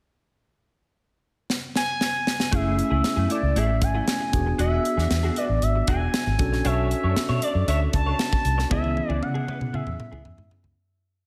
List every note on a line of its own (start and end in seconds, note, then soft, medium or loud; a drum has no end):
1.50 snare medium
1.75 2.55 G#5 medium
1.75 snare medium
2.01 snare medium
2.27 snare medium
2.40 snare medium
2.51 2.80 F#1 medium
2.51 4.29 A3 medium
2.51 2.76 A3 medium
2.51 4.29 C#4 medium
2.51 2.76 E4 medium
2.51 4.30 E4 medium
2.51 2.77 G#4 medium
2.51 4.30 G#4 medium
2.51 3.31 E5 medium
2.51 kick loud
2.51 closed hi-hat medium
2.78 muted clean electric guitar stroke soft
2.78 closed hi-hat medium
2.90 3.00 C#2 medium
2.90 3.02 A3 soft
2.90 3.02 E4 medium
2.90 3.01 G#4 medium
3.04 snare loud
3.04 closed hi-hat medium
3.16 3.26 F#2 medium
3.16 3.28 A3 medium
3.16 3.29 E4 medium
3.16 3.30 G#4 medium
3.29 3.40 A3 medium
3.29 3.41 E4 medium
3.29 3.41 A4 medium
3.29 3.59 D5 medium
3.29 closed hi-hat medium
3.43 3.52 C#2 medium
3.43 muted clean electric guitar stroke soft
3.56 3.82 A1 medium
3.56 3.69 A3 medium
3.56 3.69 E4 medium
3.56 3.67 G#4 medium
3.56 3.85 E5 medium
3.56 closed hi-hat medium
3.68 muted clean electric guitar stroke soft
3.82 4.00 G#1 medium
3.82 4.60 G#5 loud
3.82 muted clean electric guitar stroke soft
3.82 kick medium
3.82 closed hi-hat medium
3.94 4.06 A3 soft
3.94 4.05 E4 medium
3.94 4.05 G#4 medium
4.07 muted clean electric guitar stroke soft
4.07 snare loud
4.07 closed hi-hat medium
4.20 muted clean electric guitar stroke soft
4.33 4.52 E1 medium
4.33 6.35 B3 medium
4.33 6.36 D4 medium
4.33 6.36 F#4 soft
4.33 6.36 G#4 medium
4.33 kick medium
4.33 closed hi-hat medium
4.46 muted clean electric guitar stroke soft
4.59 4.77 E1 loud
4.59 4.83 D4 medium
4.59 4.83 F#4 medium
4.59 4.84 G#4 medium
4.59 5.39 E5 loud
4.59 closed hi-hat medium
4.84 muted clean electric guitar stroke soft
4.84 closed hi-hat medium
4.97 5.07 E2 medium
4.97 5.09 D4 soft
4.97 5.08 F#4 medium
4.97 5.08 G#4 medium
4.97 snare soft
5.10 5.29 E2 medium
5.10 muted clean electric guitar stroke soft
5.10 snare medium
5.10 closed hi-hat medium
5.23 5.35 D4 medium
5.23 5.36 F#4 medium
5.23 5.37 G#4 medium
5.36 5.47 D4 soft
5.36 5.47 F#4 medium
5.36 5.48 B4 medium
5.36 5.64 D5 medium
5.36 closed hi-hat medium
5.49 5.58 A1 medium
5.49 muted clean electric guitar stroke soft
5.62 5.80 G#1 medium
5.62 5.88 E5 medium
5.62 closed hi-hat medium
5.75 muted clean electric guitar stroke soft
5.87 6.06 E1 medium
5.87 6.01 D4 medium
5.87 6.00 F#4 medium
5.87 5.99 G#4 medium
5.87 6.67 G#5 loud
5.87 kick medium
5.87 closed hi-hat medium
6.00 muted clean electric guitar stroke soft
6.14 muted clean electric guitar stroke soft
6.14 snare loud
6.14 closed hi-hat medium
6.27 6.36 G#1 medium
6.27 muted clean electric guitar stroke soft
6.38 6.53 B1 medium
6.38 8.41 C#4 medium
6.38 8.41 D4 soft
6.38 8.42 F#4 medium
6.38 8.42 A4 medium
6.38 kick medium
6.38 closed hi-hat medium
6.52 6.62 A#1 medium
6.52 muted clean electric guitar stroke soft
6.52 snare soft
6.65 6.93 B1 loud
6.65 6.89 D4 medium
6.65 6.89 A4 medium
6.65 6.90 C#5 medium
6.65 7.44 E5 loud
6.65 closed hi-hat medium
6.91 muted clean electric guitar stroke soft
6.91 closed hi-hat medium
7.03 7.13 F#2 medium
7.03 7.15 D4 medium
7.03 7.15 A4 medium
7.03 7.14 C#5 medium
7.16 muted clean electric guitar stroke soft
7.16 muted fingered electric bass stroke soft
7.16 snare loud
7.16 closed hi-hat medium
7.29 7.38 B2 medium
7.29 7.41 D4 medium
7.29 7.42 A4 medium
7.29 7.43 C#5 medium
7.42 7.53 D4 medium
7.42 7.53 A4 medium
7.42 7.68 D5 medium
7.42 7.53 D5 medium
7.42 closed hi-hat medium
7.55 7.64 F#2 medium
7.55 muted clean electric guitar stroke soft
7.68 7.86 D2 medium
7.68 7.81 D4 medium
7.68 7.82 A4 medium
7.68 7.80 C#5 medium
7.68 7.80 E5 loud
7.68 closed hi-hat medium
7.81 muted clean electric guitar stroke soft
7.93 8.12 C#2 medium
7.93 8.67 A5 loud
7.93 muted clean electric guitar stroke soft
7.93 kick medium
7.93 closed hi-hat medium
8.06 8.18 D4 soft
8.06 8.18 A4 medium
8.06 8.17 C#5 medium
8.19 muted clean electric guitar stroke soft
8.19 snare loud
8.19 closed hi-hat medium
8.32 muted clean electric guitar stroke soft
8.32 kick medium
8.45 8.63 C2 medium
8.45 closed hi-hat medium
8.58 muted clean electric guitar stroke soft
8.58 snare soft
8.70 8.98 C#2 medium
8.70 10.72 B3 medium
8.70 8.94 B3 medium
8.70 10.72 C#4 medium
8.70 10.73 E4 medium
8.70 8.95 E4 medium
8.70 10.73 G#4 medium
8.70 8.95 G#4 medium
8.70 9.10 E5 loud
8.70 kick loud
8.70 high tom soft
8.84 high tom soft
8.96 muted clean electric guitar stroke soft
8.96 high tom medium
9.09 9.18 C#2 medium
9.09 9.21 B3 soft
9.09 9.20 E4 medium
9.09 9.20 G#4 medium
9.09 9.24 D5 loud
9.09 high tom soft
9.22 9.40 C#3 medium
9.22 9.75 F#5 loud
9.22 muted clean electric guitar stroke soft
9.22 mid tom medium
9.34 9.46 B3 medium
9.34 9.47 E4 medium
9.34 9.48 G#4 medium
9.34 mid tom medium
9.47 9.58 B3 medium
9.47 9.59 E4 medium
9.47 9.59 B4 medium
9.47 mid tom medium
9.61 9.70 B2 medium
9.61 muted clean electric guitar stroke soft
9.61 mid tom medium
9.73 9.83 C#3 medium
9.73 9.87 B3 medium
9.73 9.86 E4 medium
9.73 9.85 G#4 medium
9.73 10.51 E5 medium
9.73 mid tom medium
9.86 9.96 E2 medium
9.86 muted clean electric guitar stroke soft
9.86 mid tom medium
9.99 muted clean electric guitar stroke soft
9.99 mid tom medium
10.12 10.21 C#2 medium
10.12 10.23 B3 soft
10.12 10.23 E4 medium
10.12 10.22 G#4 medium
10.12 mid tom medium
10.25 10.34 E2 medium
10.25 muted clean electric guitar stroke soft
10.25 floor tom medium
10.37 10.47 G#2 medium
10.37 muted clean electric guitar stroke soft
10.37 floor tom medium
10.51 floor tom medium
10.63 10.73 C#2 medium
10.63 muted clean electric guitar stroke soft
10.63 floor tom medium